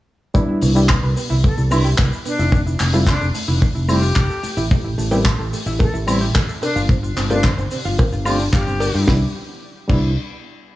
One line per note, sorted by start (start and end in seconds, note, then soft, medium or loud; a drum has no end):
0.34 0.70 G3 loud
0.34 0.70 B3 medium
0.34 0.42 B3 medium
0.34 0.70 D4 medium
0.34 0.70 E4 loud
0.34 kick loud
0.34 shaker medium
0.49 0.60 E4 medium
0.61 0.97 C2 loud
0.61 0.67 B3 medium
0.61 open hi-hat loud
0.61 shaker medium
0.75 0.87 G3 medium
0.75 0.88 B3 medium
0.75 0.88 D4 medium
0.75 0.88 E4 medium
0.75 0.83 G4 loud
0.75 shaker medium
0.89 0.94 B3 medium
0.89 kick loud
0.89 clap loud
0.89 high woodblock medium
0.89 shaker medium
1.03 1.13 C2 medium
1.03 1.10 B4 medium
1.17 1.24 B3 medium
1.17 open hi-hat loud
1.17 shaker medium
1.30 1.50 C2 medium
1.30 1.41 E4 loud
1.30 shaker medium
1.44 1.51 B3 medium
1.44 1.62 A4 medium
1.44 kick loud
1.44 shaker medium
1.57 1.93 C2 medium
1.57 1.69 E4 medium
1.57 shaker medium
1.71 1.83 G3 medium
1.71 1.75 B3 medium
1.71 1.83 B3 medium
1.71 1.83 D4 medium
1.71 1.90 E4 medium
1.71 1.84 E4 loud
1.71 open hi-hat loud
1.71 high woodblock medium
1.71 shaker medium
1.84 1.92 G4 loud
1.84 shaker medium
1.98 2.09 C2 medium
1.98 2.02 B3 medium
1.98 kick loud
1.98 clap loud
1.98 shaker medium
2.12 2.19 B4 medium
2.12 shaker soft
2.25 2.33 B3 medium
2.25 2.59 D4 loud
2.25 open hi-hat loud
2.25 shaker medium
2.39 2.74 F1 loud
2.39 2.50 E4 loud
2.39 shaker soft
2.52 2.60 A3 medium
2.52 kick loud
2.52 shaker medium
2.67 2.78 E4 medium
2.67 shaker medium
2.80 3.15 F1 loud
2.80 2.84 A3 medium
2.80 clap medium
2.80 open hi-hat loud
2.80 shaker medium
2.93 3.06 G3 medium
2.93 3.06 A3 medium
2.93 3.06 C4 medium
2.93 3.06 E4 loud
2.93 3.01 F4 loud
2.93 shaker medium
3.07 3.12 A3 medium
3.07 3.26 D4 medium
3.07 kick loud
3.07 clap loud
3.07 high woodblock medium
3.07 shaker medium
3.21 3.31 F1 medium
3.21 3.28 A4 medium
3.21 shaker medium
3.35 3.42 A3 medium
3.35 open hi-hat loud
3.35 shaker loud
3.48 3.68 F1 medium
3.48 3.59 E4 loud
3.48 shaker soft
3.62 3.69 A3 medium
3.62 kick loud
3.62 shaker medium
3.75 4.11 F1 medium
3.75 3.86 E4 medium
3.75 shaker medium
3.88 4.01 G3 medium
3.88 3.93 A3 medium
3.88 4.01 A3 medium
3.88 4.01 C4 medium
3.88 4.02 E4 loud
3.88 4.65 G4 loud
3.88 open hi-hat loud
3.88 high woodblock medium
3.88 shaker medium
4.02 4.10 F4 loud
4.02 shaker soft
4.16 4.26 F1 medium
4.16 4.21 A3 medium
4.16 kick loud
4.16 clap loud
4.16 shaker medium
4.30 4.37 A4 medium
4.30 shaker soft
4.43 4.51 A3 medium
4.43 muted fingered electric bass stroke soft
4.43 open hi-hat loud
4.43 shaker medium
4.57 4.92 A1 loud
4.57 4.68 E4 loud
4.57 shaker medium
4.71 4.78 A3 medium
4.71 kick loud
4.71 shaker medium
4.84 4.96 E4 medium
4.98 5.33 A1 loud
4.98 5.03 A3 medium
4.98 open hi-hat loud
4.98 shaker medium
5.11 5.24 G3 medium
5.11 5.24 B3 medium
5.11 5.24 C4 medium
5.11 5.24 E4 medium
5.11 5.19 G4 loud
5.11 cowbell medium
5.11 shaker soft
5.25 5.30 A3 medium
5.25 kick loud
5.25 clap loud
5.25 high woodblock medium
5.25 shaker medium
5.39 5.49 A1 medium
5.39 5.47 A4 medium
5.53 5.60 A3 medium
5.53 open hi-hat loud
5.53 shaker medium
5.66 5.86 A1 medium
5.66 5.78 E4 loud
5.66 shaker medium
5.79 5.87 A3 medium
5.79 5.99 A4 medium
5.79 kick loud
5.79 cowbell medium
5.79 shaker medium
5.94 6.29 A1 medium
5.94 6.05 E4 medium
5.94 shaker medium
6.06 6.19 G3 medium
6.06 6.12 A3 medium
6.06 6.20 B3 medium
6.06 6.20 C4 medium
6.06 6.25 E4 medium
6.06 6.20 E4 loud
6.06 open hi-hat loud
6.06 high woodblock medium
6.06 shaker medium
6.21 6.28 G4 loud
6.21 shaker soft
6.34 6.45 A1 medium
6.34 6.39 A3 medium
6.34 kick loud
6.34 clap loud
6.34 shaker medium
6.48 6.56 A4 medium
6.48 shaker soft
6.61 6.69 C4 medium
6.61 6.80 D4 medium
6.61 open hi-hat loud
6.61 cowbell loud
6.61 shaker medium
6.76 7.11 G1 loud
6.76 6.87 F4 loud
6.76 shaker medium
6.89 6.97 C4 medium
6.89 kick loud
6.89 shaker medium
7.03 7.14 F4 medium
7.03 shaker medium
7.16 7.52 G1 loud
7.16 7.21 C4 medium
7.16 clap medium
7.16 open hi-hat loud
7.16 shaker medium
7.30 7.42 A3 medium
7.30 7.42 C4 medium
7.30 7.49 D4 medium
7.30 7.43 D4 medium
7.30 7.43 F4 medium
7.30 7.37 G4 loud
7.30 cowbell medium
7.30 shaker soft
7.44 7.48 C4 medium
7.44 kick loud
7.44 clap loud
7.44 high woodblock medium
7.44 shaker medium
7.58 7.68 G1 medium
7.58 7.65 C5 medium
7.58 shaker soft
7.71 7.79 C4 medium
7.71 open hi-hat loud
7.71 shaker medium
7.85 8.05 G1 medium
7.85 7.96 F4 loud
7.85 shaker medium
7.99 8.06 C4 medium
7.99 kick loud
7.99 cowbell medium
7.99 shaker medium
8.12 8.47 G1 medium
8.12 8.23 F4 medium
8.12 shaker soft
8.25 8.38 A3 medium
8.25 8.38 C4 medium
8.25 8.38 D4 medium
8.25 8.38 F4 loud
8.25 8.33 F4 loud
8.25 8.44 G4 medium
8.25 open hi-hat loud
8.25 high woodblock medium
8.25 shaker medium
8.40 8.51 D4 medium
8.40 shaker soft
8.53 8.88 G1 medium
8.53 8.60 F4 loud
8.53 9.07 G4 loud
8.53 kick loud
8.53 clap loud
8.53 shaker medium
8.67 8.74 C4 medium
8.67 shaker soft
8.80 8.88 D5 loud
8.80 open hi-hat loud
8.80 cowbell loud
8.80 shaker medium
8.94 9.04 G2 medium
8.94 8.98 G4 loud
8.94 shaker medium
9.06 9.23 C2 loud
9.06 9.22 G3 medium
9.06 9.23 B3 medium
9.06 9.23 B3 loud
9.06 9.23 D4 medium
9.06 9.24 E4 medium
9.06 kick loud
9.06 snare medium
9.88 10.15 C2 loud
9.88 10.09 G3 medium
9.88 10.09 B3 medium
9.88 10.15 B3 medium
9.88 10.10 D4 medium
9.88 10.10 E4 medium
9.88 kick loud
9.88 crash medium